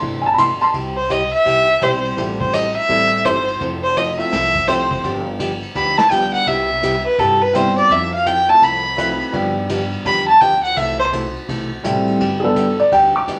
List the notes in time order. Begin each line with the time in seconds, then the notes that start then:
Already playing: A3 D4 E4 C6
0.02 G1 C3 E3 A3 E4 A4, kick
0.22 G#5
0.26 A5
0.34 C3 E3 B5
0.38 A3 E4 A4 C6, kick, hi-hat pedal, ride
0.61 A5 C6, ride
0.73 C2 C3 G3 C4 E4 G4, kick, ride
0.96 C5
1.09 C3 G3 C4 E4 G4 D#5, kick, hi-hat pedal, ride
1.33 E5, ride
1.45 C2 C3 G3 C4 E4 G4, kick, ride
1.81 B1 C3 E3 G3 C4 E4 G4 C5, kick, hi-hat pedal, ride
2.05 ride
2.17 A1 E3 G3 A3 C4 E4 G4 A4, kick, ride
2.40 C5, kick
2.53 E3 G3 C4 E4 A4 D#5, kick, hi-hat pedal, ride
2.76 E5
2.88 A1 E3 G3 A3 C4 E4 A4, kick, ride
3.25 G1 E3 G3 C4 E4 A4 C5, kick, hi-hat pedal, ride
3.48 ride
3.61 F1 F3 C4 E4 A4, kick, ride
3.83 C5
3.96 F3 C4 E4 A4 D#5, kick, hi-hat pedal, ride
4.18 F3 A3 C4 E4 F4 E5, ride
4.32 C2 F3 C4 E4 A4, kick, snare, ride
4.55 kick
4.67 F3 A3 C4 E4 G4 A4 C5, kick, hi-hat pedal, ride
4.91 kick
5.04 G1 D3 F3 B3 D4 G4, kick, ride
5.39 D3 F3 B3 D4 G4, kick, hi-hat pedal, ride
5.63 ride
5.75 D2 D3 F3 B3 D4 G4 B5, kick, ride
5.98 A5, snare
6.10 D3 F3 G3 B3 D4 F4 G4 G5, kick, hi-hat pedal, ride
6.34 F#5, ride
6.46 C2 C3 G3 B3 E4 G4 E5, kick, ride
6.82 C3 G3 B3 E4 G4, kick, hi-hat pedal, ride
7.06 B4
7.18 G2 C3 G3 B3 E4 G4 A4, kick, ride
7.42 B4
7.53 C3 G3 B3 C4 E4 G4 C5, kick, hi-hat pedal, ride
7.77 D5, ride
7.90 F2 F3 C4 E4 A4 E5, kick, ride
8.14 F5
8.26 F3 C4 E4 A4 G5, kick, hi-hat pedal, ride
8.48 A3 C4 E4 F4 A4 A5
8.62 C2 F3 C4 E4 A4 B5, kick, ride
8.96 F3 A3 C4 E4 F4 A4 B4, kick, hi-hat pedal, ride
9.21 ride
9.32 G2 D3 F3 G3 B3 D4 F4 G4, kick, ride
9.69 D3 F3 B3 D4 G4, kick, hi-hat pedal, ride
9.93 ride
10.05 E2 D3 F3 B3 D4 G4 B5, kick, ride
10.28 A5
10.41 D2 D3 F3 B3 D4 G4 G5, kick, hi-hat pedal, ride
10.63 F#5, ride
10.76 C2 C3 E3 A3 E4 A4 E5, kick, ride
10.99 C5
11.12 C3 E3 A3 E4 A4, kick, hi-hat pedal, ride
11.36 ride
11.48 B1 C3 E3 A3 E4 A4, kick, ride
11.83 A1 C3 E3 G3 A3 C4 E4 G4 A4, kick, hi-hat pedal, ride
12.07 ride
12.20 G1 D3 G3 B3 D4 G4, kick, ride
12.40 D3 G3 B3 G#4
12.45 A4
12.55 D3 G3 B3 D4 G4, kick, hi-hat pedal, ride
12.79 D5, ride
12.91 D2 D3 G3 B3 D4 G4 G5, kick, ride
13.16 D6
13.27 D3 G3 B3 D4 G4, kick, hi-hat pedal, ride